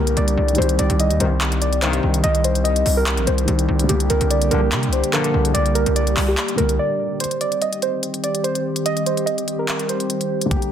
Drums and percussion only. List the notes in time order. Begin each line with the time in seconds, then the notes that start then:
0.07 closed hi-hat
0.17 closed hi-hat
0.28 closed hi-hat
0.48 closed hi-hat
0.55 closed hi-hat
0.62 closed hi-hat
0.69 closed hi-hat
0.79 closed hi-hat
0.90 closed hi-hat
1.00 closed hi-hat
1.11 closed hi-hat
1.20 closed hi-hat
1.41 clap, closed hi-hat
1.52 closed hi-hat
1.62 closed hi-hat
1.73 closed hi-hat
1.82 clap, closed hi-hat
1.93 closed hi-hat
2.14 closed hi-hat
2.24 closed hi-hat
2.35 closed hi-hat
2.44 closed hi-hat
2.55 closed hi-hat
2.65 closed hi-hat
2.76 closed hi-hat
2.86 open hi-hat
3.06 clap, closed hi-hat
3.17 closed hi-hat
3.27 closed hi-hat
3.38 closed hi-hat
3.48 closed hi-hat
3.59 closed hi-hat
3.79 closed hi-hat
3.89 closed hi-hat
4.00 closed hi-hat
4.10 closed hi-hat
4.21 closed hi-hat
4.31 closed hi-hat
4.42 closed hi-hat
4.51 closed hi-hat
4.72 clap, closed hi-hat
4.83 closed hi-hat
4.93 closed hi-hat
5.04 closed hi-hat
5.13 clap, closed hi-hat
5.24 closed hi-hat
5.45 closed hi-hat
5.55 closed hi-hat
5.66 closed hi-hat
5.75 closed hi-hat
5.86 closed hi-hat
5.96 closed hi-hat
6.07 closed hi-hat
6.17 clap, open hi-hat
6.37 clap, closed hi-hat
6.48 closed hi-hat
6.58 closed hi-hat
6.69 closed hi-hat
7.20 closed hi-hat
7.24 closed hi-hat
7.31 closed hi-hat
7.41 closed hi-hat
7.52 closed hi-hat
7.62 closed hi-hat
7.73 closed hi-hat
7.82 closed hi-hat
8.03 closed hi-hat
8.14 closed hi-hat
8.24 closed hi-hat
8.35 closed hi-hat
8.44 closed hi-hat
8.55 closed hi-hat
8.76 closed hi-hat
8.86 closed hi-hat
8.97 closed hi-hat
9.06 closed hi-hat
9.17 closed hi-hat
9.27 closed hi-hat
9.38 closed hi-hat
9.48 closed hi-hat
9.68 clap, closed hi-hat
9.79 closed hi-hat
9.89 closed hi-hat
10.00 closed hi-hat
10.10 closed hi-hat
10.21 closed hi-hat
10.41 closed hi-hat
10.51 kick, closed hi-hat
10.62 closed hi-hat